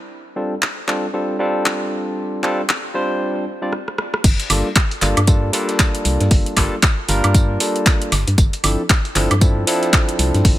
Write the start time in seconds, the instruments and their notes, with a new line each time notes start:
0.36 tine electric piano G3 C4 D4 F4 A4
0.62 clap
0.88 tine electric piano G3 C4 D4 F4 A4, clap
1.13 tine electric piano G3 C4 D4 F4 A4
1.39 tine electric piano G3 C4 D4 F4 A4
1.66 clap
2.43 tine electric piano G3 C4 D4 F4 A4, clap
2.69 clap
2.94 tine electric piano G3 C4 D4 F4 C5
3.62 tine electric piano G3 C4 D4 F4 D5
3.73 cross-stick
3.88 cross-stick
3.98 cross-stick
4.14 cross-stick
4.24 fm bass G1, kick, closed hi-hat, crash, tambourine
4.40 closed hi-hat
4.50 fm bass G1, tine electric piano G3 A#3 D4 F4 A4, open hi-hat, tambourine, high woodblock
4.76 kick, snare, clap, closed hi-hat, tambourine
4.91 closed hi-hat
5.01 fm bass G1, tine electric piano G3 A#3 D4 F4 A4, clap, open hi-hat, tambourine
5.17 fm bass G2, closed hi-hat, high woodblock
5.27 tine electric piano G3 A#3 D4 F4 A4, kick, closed hi-hat, tambourine
5.53 tine electric piano G3 A#3 D4 F4 A4, open hi-hat, tambourine
5.69 snare, closed hi-hat
5.79 kick, snare, clap, closed hi-hat, tambourine
5.95 closed hi-hat
6.05 fm bass C2, open hi-hat, tambourine
6.21 fm bass G2, snare, closed hi-hat
6.31 fm bass G1, kick, closed hi-hat, open hi-hat
6.46 closed hi-hat
6.57 fm bass G1, tine electric piano G3 A#3 D4 F4 A4, kick, clap, open hi-hat, tambourine, high woodblock
6.83 kick, snare, clap, closed hi-hat, tambourine
7.08 fm bass G1, tine electric piano G3 A#3 D4 F4 A#4, open hi-hat, tambourine
7.24 fm bass G2, closed hi-hat, high woodblock
7.34 kick, closed hi-hat, tambourine
7.60 tine electric piano G3 A#3 D4 F4 A4, open hi-hat, tambourine
7.76 closed hi-hat
7.86 kick, snare, clap, closed hi-hat, tambourine
8.02 closed hi-hat
8.12 fm bass G1, snare, open hi-hat, tambourine, high woodblock
8.27 fm bass G2, closed hi-hat
8.38 fm bass G1, kick, closed hi-hat, tambourine
8.53 closed hi-hat
8.63 fm bass G1, tine electric piano F3 C4 D4 E4 A4, open hi-hat, tambourine, high woodblock
8.90 kick, snare, clap, closed hi-hat, tambourine
9.05 closed hi-hat
9.15 fm bass G1, tine electric piano F3 C4 D4 E4 A4, clap, open hi-hat, tambourine
9.31 fm bass G2, closed hi-hat, high woodblock
9.41 tine electric piano F3 C4 D4 E4 A4, kick, closed hi-hat, tambourine
9.66 tine electric piano F3 C4 D4 E4 A4, open hi-hat, tambourine
9.83 snare, closed hi-hat
9.93 kick, snare, clap, closed hi-hat, tambourine
10.09 closed hi-hat
10.19 fm bass C2, open hi-hat, tambourine
10.34 fm bass G2, snare, closed hi-hat
10.45 fm bass G1, kick, closed hi-hat, open hi-hat